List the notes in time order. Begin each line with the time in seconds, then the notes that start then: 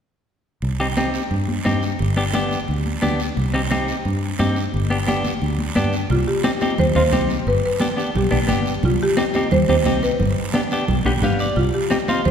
0.62 C2, high conga, long guiro
0.80 C4 D#4 G4
0.97 C4 D#4 G4, high conga, short guiro
1.14 short guiro
1.31 G2, high conga, long guiro
1.48 high conga
1.65 G2 C4 D#4 G4, high conga, short guiro
1.82 short guiro
1.99 G1, high conga, long guiro
2.17 B3 D4 G4
2.33 B3 D4 G4, high conga, short guiro
2.51 short guiro
2.68 D2, high conga, long guiro
2.86 high conga
3.02 D2 B3 D4 G4, high conga, short guiro
3.20 short guiro
3.37 C2, high conga, long guiro
3.54 C4 D#4 G4
3.70 C4 D#4 G4, high conga, short guiro
3.88 short guiro
4.05 G2, high conga, long guiro
4.39 G2 C4 D#4 G4, high conga, short guiro
4.56 short guiro
4.74 G1, high conga, long guiro
4.90 B3 D4 G4
5.07 B3 D4 G4, high conga, short guiro
5.24 high conga, short guiro
5.42 D2, high conga, long guiro
5.58 high conga
5.75 G2 B3 D4 G4, high conga, short guiro
5.93 short guiro
6.10 C2 F4, high conga, long guiro
6.28 G4
6.44 C4 D#4 G4, high conga, short guiro
6.61 C4 D#4 G4, high conga, short guiro
6.78 D#2 C5, high conga, low conga, long guiro
6.95 D#2 C4 D#4 F4 C5, high conga
7.12 C2 C4 D#4 G4, high conga, low conga, short guiro
7.30 short guiro
7.46 G1 B4, high conga, long guiro
7.65 B4
7.80 B3 D4 G4, high conga, short guiro
7.97 B3 D4 G4, short guiro
8.15 B1 G4, high conga, low conga, long guiro
8.31 B1 B3 D4 G4, high conga
8.48 G1 B3 D4 G4, high conga, short guiro
8.66 short guiro
8.83 C2 F4, high conga, low conga, long guiro
9.03 G4
9.17 C4 D#4 G4, high conga, short guiro
9.34 C4 D#4 G4, high conga, short guiro
9.51 D#2 C5, high conga, low conga, long guiro
9.69 D#2 C4 D#4 G4 C5, high conga
9.85 C2 C4 D#4 G4, high conga, short guiro
10.03 B4, short guiro
10.20 G1, high conga, low conga, long guiro
10.54 B3 D4 G4, high conga, short guiro
10.71 B3 D4 G4, short guiro
10.88 B1, high conga, low conga, long guiro
11.05 B1 B3 D4 G4 G5, high conga
11.22 G1 B3 D4 G4 F5, high conga, low conga, short guiro
11.39 D5, short guiro
11.56 C2 F4, high conga, long guiro
11.74 G4
11.90 C4 D#4 G4, high conga, short guiro
12.08 C4 D#4 F4, high conga, short guiro
12.25 D#2 C5, high conga, low conga, long guiro